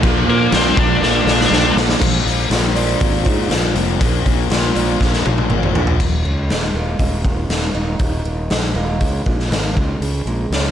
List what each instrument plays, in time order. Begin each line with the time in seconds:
Already playing: tonewheel organ F5
0.01 fingered electric bass A#1, distorted electric guitar A#2 F3 A#3 D4 F4, tonewheel organ A#4 D6, kick, crash
0.05 tonewheel organ D5
0.26 fingered electric bass A#2, distorted electric guitar A#3 D4 F4, lead electric guitar A#3 A#4
0.52 fingered electric bass A#1, distorted electric guitar A#2 F3 A#3 D4 F4, lead electric guitar C4 C5, snare, crash
0.77 fingered electric bass A#1, distorted electric guitar A#3 D4 F4, lead electric guitar D4 D5, kick
1.02 fingered electric bass A#1, distorted electric guitar F3 A#3 D4 F4, lead electric guitar D4 D5, snare
1.25 fingered electric bass A#1, distorted electric guitar A#2 F3 A#3 D4 F4, snare
1.41 snare
1.50 fingered electric bass A#1, overdriven electric guitar A#2, distorted electric guitar F3 A#3 D4 F4, snare
1.76 fingered electric bass A#1, distorted electric guitar A#3 D4 F4, snare
1.89 snare
2.01 fingered electric bass A#1, distorted electric guitar A#2 F3 A#3, steel-string acoustic guitar A#2, kick, crash
2.25 fingered electric bass A#1, open hi-hat
2.50 fingered electric bass A#1, distorted electric guitar A#2 F3 A#3, steel-string acoustic guitar F4, snare, open hi-hat
2.76 distorted electric guitar A#2 F3 A#3, steel-string acoustic guitar D4, open hi-hat
3.00 fingered electric bass G#1, distorted electric guitar A#2 F3 A#3, steel-string acoustic guitar A#3, kick, open hi-hat
3.25 fingered electric bass G#2, steel-string acoustic guitar F3, kick, open hi-hat
3.50 fingered electric bass A#1, distorted electric guitar A#2 F3 A#3, steel-string acoustic guitar A#3, snare, open hi-hat
3.74 fingered electric bass F1, distorted electric guitar A#2 F3 A#3, steel-string acoustic guitar F3, open hi-hat
4.00 fingered electric bass A#1, distorted electric guitar A#2 F3 A#3, steel-string acoustic guitar A#2, kick, open hi-hat
4.26 fingered electric bass A#1, kick, open hi-hat
4.50 fingered electric bass A#1, distorted electric guitar A#2 F3 A#3, steel-string acoustic guitar F4, snare, open hi-hat
4.75 fingered electric bass A#1, distorted electric guitar A#2 F3 A#3, steel-string acoustic guitar D4, open hi-hat
5.00 fingered electric bass A#1, distorted electric guitar A#2 F3 A#3, steel-string acoustic guitar A#3, kick, snare
5.13 snare
5.25 fingered electric bass A#1, steel-string acoustic guitar F3, high tom
5.38 high tom
5.50 fingered electric bass G#1, distorted electric guitar A#2 F3 A#3, steel-string acoustic guitar A#3, mid tom
5.63 mid tom
5.74 fingered electric bass A#1, distorted electric guitar A#2 F3 A#3, steel-string acoustic guitar F3, floor tom
5.87 floor tom
6.00 fingered electric bass D#1, steel-string acoustic guitar D#2, kick, crash
6.25 fingered electric bass C#2, steel-string acoustic guitar D#3
6.50 fingered electric bass D#1, steel-string acoustic guitar G#3, snare, open hi-hat
6.74 fingered electric bass D#1, steel-string acoustic guitar A#3
6.99 fingered electric bass D#1, steel-string acoustic guitar G#3, kick, open hi-hat
7.25 steel-string acoustic guitar D#3, kick
7.49 fingered electric bass D#1, steel-string acoustic guitar A#3, snare, open hi-hat
7.75 fingered electric bass D#1, steel-string acoustic guitar D#4
7.99 fingered electric bass D#1, steel-string acoustic guitar D#2, kick, open hi-hat
8.25 fingered electric bass D#1, steel-string acoustic guitar D#3
8.50 fingered electric bass A#1, steel-string acoustic guitar G#3, snare, open hi-hat
8.75 fingered electric bass D#1, steel-string acoustic guitar A#3
9.01 fingered electric bass C#2, steel-string acoustic guitar G#3, kick, open hi-hat
9.26 fingered electric bass A#1, steel-string acoustic guitar D#3, kick
9.40 snare
9.51 fingered electric bass G#1, steel-string acoustic guitar A#3, snare, open hi-hat
9.77 fingered electric bass C#2, steel-string acoustic guitar C#3, kick
10.00 fingered electric bass C#2, steel-string acoustic guitar C#3, open hi-hat
10.25 fingered electric bass A#1, steel-string acoustic guitar G#3
10.50 fingered electric bass C#2, steel-string acoustic guitar C#4, snare, open hi-hat